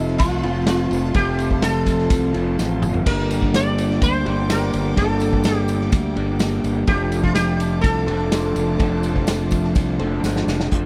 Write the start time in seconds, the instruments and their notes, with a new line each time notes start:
Already playing: fingered electric bass F1, clean electric guitar F3 A3 C4 F4, sitar D#4, string section F4 C5 A5 C6
0.08 snare
0.18 fingered electric bass C2, sitar F4, kick, ride, tambourine
0.43 fingered electric bass F1, clean electric guitar F3 A3 C4 F4, ride
0.67 clean electric guitar F3 A3 C4 F4, sitar F4, snare, ride, tambourine
0.91 fingered electric bass F1, ride, tambourine
1.14 fingered electric bass F1, clean electric guitar F3 A3 C4, sitar G4, kick, ride, tambourine
1.19 clean electric guitar F4
1.38 ride, tambourine
1.51 kick
1.62 sitar A4, snare, ride, tambourine
1.86 kick, ride, tambourine
1.98 snare
2.10 fingered electric bass C2, kick, ride, tambourine
2.34 fingered electric bass F1, clean electric guitar F3 A3 C4 F4, ride, tambourine
2.58 fingered electric bass A1, clean electric guitar F3 A3 C4 F4, snare, tambourine
2.82 fingered electric bass G1, mid tom, tambourine
2.94 floor tom
3.04 fingered electric bass G1, clean electric guitar G3 A#3, string section G4 D5 G5 D6, sitar A#4, kick, crash, ride, tambourine
3.08 clean electric guitar D4 G4
3.31 ride, tambourine
3.42 kick
3.54 sitar D5, snare, ride, tambourine
3.78 ride, tambourine
3.90 snare
4.02 fingered electric bass D2, sitar C5, kick, ride, tambourine
4.25 fingered electric bass G1, clean electric guitar G3 A#3 D4 G4, ride
4.49 clean electric guitar G3 A#3 D4 G4, sitar A#4, snare, ride, tambourine
4.73 fingered electric bass G1, ride, tambourine
4.96 fingered electric bass G1, clean electric guitar G3 A#3 D4 G4, sitar A4, kick, ride, tambourine
5.20 ride, tambourine
5.33 kick
5.44 sitar G4, snare, ride, tambourine
5.68 ride, tambourine
5.81 snare
5.92 fingered electric bass D2, kick, ride, tambourine
6.16 fingered electric bass G1, clean electric guitar G3 A#3 D4 G4, ride
6.39 clean electric guitar G3 A#3 D4, snare, ride, tambourine
6.44 clean electric guitar G4
6.64 fingered electric bass G1, ride, tambourine
6.87 fingered electric bass F1, clean electric guitar F3 A3 D4 A4 C5, string section F4 C5 A5 D6, sitar G4, kick, ride, tambourine
7.12 ride, tambourine
7.23 sitar F4, kick
7.35 sitar G4, snare, ride, tambourine
7.60 ride, tambourine
7.81 fingered electric bass C2, sitar A4, kick, ride, tambourine
8.07 fingered electric bass F1, clean electric guitar F3 A3 D4 A4 C5, ride
8.31 clean electric guitar F3 A3 D4 A4 C5, snare, ride, tambourine
8.56 fingered electric bass F1, ride, tambourine
8.78 fingered electric bass F1, clean electric guitar F3 A3 D4 A4 C5, kick, ride, tambourine
9.03 ride, tambourine
9.16 kick
9.27 snare, ride, tambourine
9.51 kick, ride, tambourine
9.64 snare
9.75 fingered electric bass C2, kick, ride, tambourine
9.99 fingered electric bass F1, clean electric guitar F3 A3 D4 A4 C5, ride
10.23 fingered electric bass G1, clean electric guitar F3 A3 D4 A4 C5, snare, tambourine
10.36 snare
10.47 fingered electric bass F1, snare, tambourine
10.60 snare
10.71 fingered electric bass F1, clean electric guitar F3 A3 D4 A4 C5, string section A3 C4 D4 F4 C5, kick, closed hi-hat